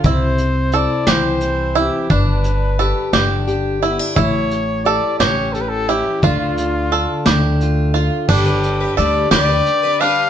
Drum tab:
CC |------|------|------|------|
HH |xxxxxx|xxxxxx|xxxxxx|xxxxxx|
SD |---o--|---o--|---o--|---o--|
BD |o-----|o-----|o-----|o-----|

CC |x-----|
HH |-xxxxx|
SD |---o--|
BD |o-----|